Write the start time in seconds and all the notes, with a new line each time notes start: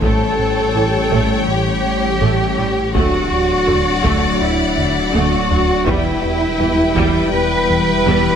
Already playing: A1 A3
0.01 A1 A2 E3 G3 A3 C#4 G4 A4 C#5 G5, taiko
0.39 A2
0.75 A1 A2 E3 G4
1.11 A1 A2 A3, taiko
1.48 A2 G4
1.85 A3
2.21 A1 A2 A3
2.58 A1 A2 G3 G4
2.94 D1 D2 D3 F#3 A3 D4 F#4 D5 F#5, taiko
3.32 D2
3.68 D2 D3 D4, taiko low
4.04 D2 D3 A3, taiko
4.41 D2 E4
4.78 D3, taiko low
5.13 D2 D3 A3 F#4
5.50 D2 F#3 D4, taiko low
5.87 E1 E2 E3 G3 B3 E4 B4 E5 G5, taiko
6.24 E2
6.60 E2 E3 E4, taiko low
6.97 E2 E3 G3, taiko
7.33 E2 B4
7.70 E3, taiko low
8.06 E2 E3 G3